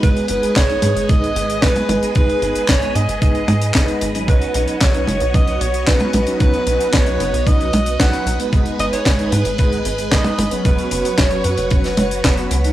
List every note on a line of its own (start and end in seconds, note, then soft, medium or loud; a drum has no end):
0.00 0.15 G#1 loud
0.00 0.27 G#3 loud
0.00 4.24 G#3 medium
0.00 0.27 B3 medium
0.00 0.27 D#4 medium
0.00 4.24 G#4 medium
0.00 0.27 B4 loud
0.00 4.24 B4 medium
0.00 0.28 B4 loud
0.00 8.49 D#5 medium
0.00 kick loud
0.00 closed hi-hat medium
0.16 closed hi-hat soft
0.28 0.42 G#1 loud
0.28 0.50 G#3 loud
0.28 0.50 B3 medium
0.28 0.50 D#4 medium
0.28 0.50 B4 loud
0.28 0.54 B4 loud
0.28 closed hi-hat loud
0.43 closed hi-hat medium
0.56 0.80 G#1 loud
0.56 1.11 C#5 loud
0.56 kick loud
0.56 snare loud
0.56 clap medium
0.56 closed hi-hat medium
0.70 0.90 G#3 medium
0.70 0.90 B3 medium
0.70 0.90 D#4 medium
0.70 0.90 B4 medium
0.70 closed hi-hat soft
0.82 0.95 G#2 medium
0.82 closed hi-hat loud
0.82 high tom medium
0.96 1.08 G#1 medium
0.96 closed hi-hat medium
1.09 1.33 G#1 loud
1.09 1.30 G#3 medium
1.09 1.30 B3 medium
1.09 1.30 D#4 medium
1.09 1.30 B4 medium
1.09 1.64 D#5 loud
1.09 kick loud
1.09 closed hi-hat medium
1.24 closed hi-hat soft
1.36 1.60 G#1 medium
1.36 closed hi-hat loud
1.50 closed hi-hat medium
1.62 1.74 G#1 loud
1.62 1.95 G#3 loud
1.62 1.95 B3 medium
1.62 1.95 D#4 medium
1.62 2.02 B4 loud
1.62 1.95 B4 loud
1.62 kick loud
1.62 snare loud
1.62 clap medium
1.62 closed hi-hat medium
1.76 closed hi-hat medium
1.76 high tom medium
1.89 2.01 G#1 medium
1.89 closed hi-hat loud
1.89 high tom medium
2.02 2.39 G#3 loud
2.02 2.39 B3 medium
2.02 2.39 D#4 medium
2.02 2.39 B4 loud
2.02 closed hi-hat medium
2.15 2.28 G#1 loud
2.15 2.70 B4 loud
2.15 kick loud
2.15 closed hi-hat medium
2.29 closed hi-hat soft
2.42 2.54 G#1 loud
2.42 2.63 G#3 medium
2.42 2.63 B3 medium
2.42 2.63 D#4 medium
2.42 2.63 B4 loud
2.42 closed hi-hat medium
2.55 closed hi-hat medium
2.68 2.93 G#1 medium
2.68 2.97 C#5 loud
2.68 kick loud
2.68 snare loud
2.68 clap loud
2.68 closed hi-hat medium
2.82 3.02 G#3 medium
2.82 3.02 B3 medium
2.82 3.02 D#4 medium
2.82 3.02 B4 medium
2.82 closed hi-hat soft
2.95 3.07 G#2 medium
2.95 3.21 D#5 loud
2.95 closed hi-hat loud
3.09 3.20 G#1 medium
3.09 closed hi-hat medium
3.22 3.46 G#1 loud
3.22 3.42 G#3 medium
3.22 3.42 B3 medium
3.22 3.42 D#4 medium
3.22 3.42 B4 medium
3.22 3.98 D#5 loud
3.22 kick loud
3.22 closed hi-hat medium
3.35 closed hi-hat soft
3.48 3.72 G#2 loud
3.48 closed hi-hat medium
3.48 high tom medium
3.62 closed hi-hat medium
3.74 3.87 G#1 loud
3.74 4.08 G#3 loud
3.74 4.08 B3 medium
3.74 4.08 D#4 medium
3.74 4.08 B4 loud
3.74 kick loud
3.74 snare loud
3.74 clap medium
3.74 closed hi-hat medium
3.88 closed hi-hat soft
4.01 4.25 G#1 medium
4.01 closed hi-hat loud
4.15 4.51 F#3 loud
4.15 4.51 C#4 medium
4.15 4.51 D#4 medium
4.15 4.51 B4 loud
4.15 closed hi-hat medium
4.28 4.40 B1 loud
4.28 8.49 B3 medium
4.28 8.49 F#4 medium
4.28 4.83 B4 medium
4.28 6.38 C#5 medium
4.28 kick loud
4.28 closed hi-hat medium
4.42 closed hi-hat soft
4.54 4.67 B1 loud
4.54 4.75 F#3 loud
4.54 4.75 C#4 medium
4.54 4.75 D#4 medium
4.54 4.75 B4 loud
4.54 closed hi-hat medium
4.68 closed hi-hat medium
4.80 5.05 B1 medium
4.80 5.36 C#5 medium
4.80 kick loud
4.80 snare loud
4.80 clap medium
4.80 closed hi-hat medium
4.94 5.15 F#3 medium
4.94 5.15 C#4 medium
4.94 5.15 D#4 medium
4.94 5.15 B4 medium
4.94 closed hi-hat medium
5.07 5.20 F#1 medium
5.07 closed hi-hat medium
5.07 high tom medium
5.20 5.33 B1 medium
5.20 closed hi-hat medium
5.34 5.58 B1 loud
5.34 5.55 F#3 medium
5.34 5.55 C#4 medium
5.34 5.55 D#4 medium
5.34 5.55 B4 medium
5.34 5.62 D#5 loud
5.34 kick loud
5.34 closed hi-hat medium
5.47 closed hi-hat soft
5.61 5.85 B1 medium
5.61 5.89 C#5 loud
5.61 closed hi-hat loud
5.74 closed hi-hat medium
5.87 5.99 B1 loud
5.87 6.20 F#3 loud
5.87 6.20 C#4 medium
5.87 6.20 D#4 medium
5.87 6.20 B4 loud
5.87 6.27 B4 loud
5.87 kick loud
5.87 snare loud
5.87 clap medium
5.87 closed hi-hat medium
6.00 closed hi-hat soft
6.00 high tom medium
6.13 6.26 B1 loud
6.13 closed hi-hat loud
6.13 high tom medium
6.27 6.64 F#3 loud
6.27 6.64 C#4 medium
6.27 6.64 D#4 medium
6.27 6.64 B4 loud
6.27 closed hi-hat medium
6.40 6.52 B1 loud
6.40 6.95 B4 loud
6.40 12.73 B4 medium
6.40 kick loud
6.40 closed hi-hat medium
6.54 closed hi-hat soft
6.67 6.79 B1 loud
6.67 6.87 F#3 loud
6.67 6.87 C#4 medium
6.67 6.87 D#4 medium
6.67 6.87 B4 loud
6.67 closed hi-hat loud
6.81 closed hi-hat medium
6.93 7.17 B1 loud
6.93 7.48 C#5 loud
6.93 kick loud
6.93 snare loud
6.93 clap medium
6.93 closed hi-hat medium
7.06 7.27 F#3 medium
7.06 7.27 C#4 medium
7.06 7.27 D#4 medium
7.06 7.27 B4 loud
7.06 closed hi-hat soft
7.20 7.32 F#1 medium
7.20 closed hi-hat medium
7.33 7.45 B1 medium
7.33 closed hi-hat medium
7.47 7.70 B1 loud
7.47 7.67 F#3 medium
7.47 7.67 C#4 medium
7.47 7.67 D#4 medium
7.47 7.67 B4 medium
7.47 8.02 D#5 loud
7.47 kick loud
7.47 closed hi-hat medium
7.61 closed hi-hat soft
7.73 7.97 B1 medium
7.73 closed hi-hat loud
7.73 high tom medium
7.86 closed hi-hat medium
8.00 8.12 B1 loud
8.00 8.32 F#3 loud
8.00 8.32 C#4 medium
8.00 8.32 D#4 medium
8.00 8.32 B4 loud
8.00 8.40 F#5 loud
8.00 kick loud
8.00 snare loud
8.00 clap medium
8.00 closed hi-hat medium
8.13 closed hi-hat soft
8.26 8.38 B1 medium
8.26 closed hi-hat loud
8.40 8.76 G#3 loud
8.40 8.76 B3 medium
8.40 8.76 D#4 medium
8.40 8.76 B4 loud
8.40 closed hi-hat medium
8.53 8.65 G#1 loud
8.53 10.63 G#3 medium
8.53 10.63 G#4 medium
8.53 10.63 D#5 loud
8.53 kick loud
8.53 closed hi-hat medium
8.66 closed hi-hat soft
8.79 8.91 G#1 loud
8.79 9.00 G#3 loud
8.79 9.00 B3 medium
8.79 9.00 D#4 medium
8.79 9.00 B4 loud
8.79 8.86 D#5 loud
8.79 closed hi-hat medium
8.93 9.30 C#5 loud
8.93 closed hi-hat medium
9.06 9.30 G#1 loud
9.06 kick loud
9.06 snare loud
9.06 clap medium
9.06 closed hi-hat medium
9.19 9.40 G#3 medium
9.19 9.40 B3 medium
9.19 9.40 D#4 medium
9.19 9.40 B4 loud
9.19 closed hi-hat soft
9.32 9.44 G#2 medium
9.32 9.57 B4 loud
9.32 closed hi-hat loud
9.32 high tom medium
9.45 9.58 G#1 medium
9.45 closed hi-hat medium
9.58 9.83 G#1 loud
9.58 9.79 G#3 medium
9.58 9.79 B3 medium
9.58 9.79 D#4 medium
9.58 9.79 B4 medium
9.58 10.14 B4 loud
9.58 kick loud
9.58 closed hi-hat medium
9.72 closed hi-hat soft
9.85 10.09 G#1 medium
9.85 closed hi-hat loud
9.98 closed hi-hat medium
10.12 10.24 G#1 loud
10.12 10.45 G#3 loud
10.12 10.45 B3 medium
10.12 10.45 D#4 medium
10.12 10.45 B4 loud
10.12 10.52 D#5 loud
10.12 kick loud
10.12 snare loud
10.12 clap loud
10.12 closed hi-hat medium
10.24 closed hi-hat soft
10.24 high tom medium
10.38 10.50 G#1 loud
10.38 closed hi-hat loud
10.38 high tom medium
10.51 10.89 F#3 loud
10.51 10.88 B3 medium
10.51 10.88 C#4 medium
10.51 10.89 B4 loud
10.51 closed hi-hat medium
10.65 10.77 F#1 loud
10.65 12.73 F#3 medium
10.65 12.73 F#4 medium
10.65 11.20 B4 loud
10.65 12.73 C#5 loud
10.65 kick loud
10.65 closed hi-hat medium
10.78 closed hi-hat soft
10.91 11.04 F#1 medium
10.91 11.12 F#3 loud
10.91 11.12 B3 medium
10.91 11.12 C#4 medium
10.91 11.12 B4 loud
10.91 closed hi-hat loud
11.05 closed hi-hat medium
11.18 11.42 F#1 medium
11.18 11.46 C#5 medium
11.18 kick loud
11.18 snare loud
11.18 clap loud
11.18 closed hi-hat medium
11.31 11.52 F#3 medium
11.31 11.52 B3 medium
11.31 11.52 C#4 medium
11.31 11.52 B4 medium
11.31 closed hi-hat medium
11.44 11.57 F#2 medium
11.44 11.71 B4 medium
11.44 closed hi-hat medium
11.58 11.70 F#1 medium
11.58 closed hi-hat medium
11.70 11.95 F#1 loud
11.70 11.92 F#3 medium
11.70 11.92 B3 medium
11.70 11.92 C#4 medium
11.70 12.47 B4 medium
11.70 11.92 B4 medium
11.70 kick loud
11.70 closed hi-hat medium
11.84 snare soft
11.84 closed hi-hat soft
11.97 12.22 F#1 medium
11.97 closed hi-hat loud
11.97 high tom medium
12.11 closed hi-hat medium
12.24 12.48 F#1 medium
12.24 12.57 F#3 loud
12.24 12.57 B3 medium
12.24 12.57 C#4 medium
12.24 12.57 B4 loud
12.24 kick loud
12.24 snare loud
12.24 clap loud
12.24 closed hi-hat medium
12.38 closed hi-hat soft
12.51 12.73 C#2 medium
12.51 closed hi-hat loud
12.64 12.73 F#3 loud
12.64 12.73 C#4 medium
12.64 12.73 D#4 loud
12.64 12.73 B4 loud
12.64 closed hi-hat medium